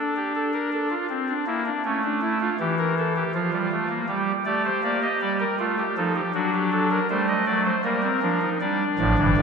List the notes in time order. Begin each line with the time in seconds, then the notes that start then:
Already playing: D4 A4
0.16 G4
0.35 A4
0.53 A#4
0.72 A4
0.90 F4
1.10 C4
1.28 D4
1.47 A#3 E4
1.66 D4
1.84 A3 C#4
2.03 D4
2.21 E4
2.40 F4
2.59 E3 G4
2.78 A#4
2.98 A4
3.16 G4
3.34 F3 F4
3.53 G3
3.72 A3
3.89 A#3
4.08 G3 G4
4.45 A3 G4 D5
4.65 C5
4.83 A#3 D5
5.02 D#5
5.21 G3 D5
5.40 A#4
5.59 A3 F4
5.78 G4
5.97 F3 D#4 A4
6.15 G4
6.34 F#3 D4 F#4
6.54 G4
6.71 A4
6.91 A#4
7.10 G3 A3 C5
7.28 D#5
7.46 F#3 D5
7.65 C5
7.84 G3 A#3 A#4
8.03 C4
8.22 F3 D4
8.41 D#4
8.61 G3 D4 D5
8.99 A1 A2 F3 D5
9.18 G1 G2 E3
9.37 A1 A2 D3